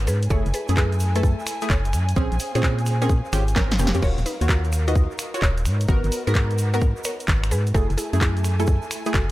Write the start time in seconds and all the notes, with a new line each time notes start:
Already playing: B3 C#4 D#4 A#4
0.07 G#2 G#4 B4, open hi-hat, shaker
0.22 closed hi-hat, shaker
0.30 F#1 A3 E4 G#4 A4 C#5 G#5, kick, shaker
0.46 F#1, closed hi-hat, shaker
0.54 G#4 B4, open hi-hat, shaker
0.68 F#2 A3 E4 G#4, closed hi-hat, shaker
0.77 G#4 B4, kick, clap, shaker
0.92 closed hi-hat, shaker
1.00 open hi-hat, shaker
1.15 A3 E4 G#4 A4 B4, closed hi-hat, shaker
1.23 kick, shaker
1.40 shaker
1.47 finger snap, open hi-hat, shaker
1.61 A3 E4 G#4, closed hi-hat, shaker
1.70 F#1 A4 C#5, kick, clap, shaker
1.84 closed hi-hat, shaker
1.93 F#2, finger snap, open hi-hat, shaker
2.09 closed hi-hat, shaker
2.16 A#1 C4 C#4 G#4 C5 F5, kick, shaker
2.32 A#1, closed hi-hat, shaker
2.40 open hi-hat, shaker
2.55 A#2 C4 C#4 G#4 C5, closed hi-hat, shaker
2.63 kick, clap, shaker
2.79 closed hi-hat, shaker
2.86 finger snap, open hi-hat, shaker
3.02 C4 C#4 G#4 A#4, closed hi-hat, shaker
3.09 kick, shaker
3.25 shaker
3.33 G#1 C4 C#4 F4 G4 G#4, finger snap, open hi-hat, shaker
3.48 closed hi-hat, shaker
3.56 C4 C#4 A#4, kick, snare, clap, shaker
3.71 snare, closed hi-hat, shaker
3.79 F1 A#3 C4 C#4 G4, open hi-hat, shaker
3.87 snare
3.94 F2 C4 C#4 G4, closed hi-hat, shaker
4.02 D#1 F4 F#4 A#4 C#5, kick, crash, shaker
4.18 D#1, closed hi-hat, shaker
4.26 D#4 B4, open hi-hat, shaker
4.41 D#2 F4 F#4 C#5, closed hi-hat, shaker
4.49 F#4 A#4, kick, clap, shaker
4.64 closed hi-hat, shaker
4.72 finger snap, open hi-hat, shaker
4.87 D#4 F4 F#4 B4 D#5, closed hi-hat, shaker
4.95 kick, shaker
5.11 shaker
5.19 finger snap, open hi-hat, shaker
5.34 F4 F#4 C#5, closed hi-hat, shaker
5.42 D#1 A#4 C#5, kick, clap, shaker
5.57 closed hi-hat, shaker
5.65 G#2 B3 D#4 F#4 A#4, finger snap, open hi-hat, shaker
5.81 closed hi-hat, shaker
5.88 G#1 B3 F#4 A#4, kick, shaker
6.04 G#1, closed hi-hat, shaker
6.12 open hi-hat, shaker
6.27 G#2 B3 F#4 G#4 A#4 B4, closed hi-hat, shaker
6.34 kick, clap, shaker
6.51 closed hi-hat, shaker
6.58 open hi-hat, shaker
6.74 B3 F#4 A#4, closed hi-hat, shaker
6.81 kick, shaker
6.97 shaker
7.04 A#4 C#5, finger snap, open hi-hat, shaker
7.20 closed hi-hat, shaker
7.28 G#1, kick, clap, shaker
7.44 finger snap, closed hi-hat, shaker
7.51 G#2 G#4 B4, open hi-hat, shaker
7.67 closed hi-hat, shaker
7.74 F#1 A3 E4 F#4 G#4 A4 G#5, kick, shaker
7.90 F#1, closed hi-hat, shaker
7.97 E4 G#4, open hi-hat, shaker
8.13 F#2 A3 E4 G#4, closed hi-hat, shaker
8.21 E4 G#4, kick, clap, shaker
8.37 closed hi-hat, shaker
8.44 finger snap, open hi-hat, shaker
8.59 A3 E4 G#4 A4, closed hi-hat, shaker
8.67 kick, shaker
8.82 shaker
8.91 finger snap, open hi-hat, shaker
9.05 A3 E4 G#4, closed hi-hat, shaker
9.14 F#1 F#4 A4, kick, clap, shaker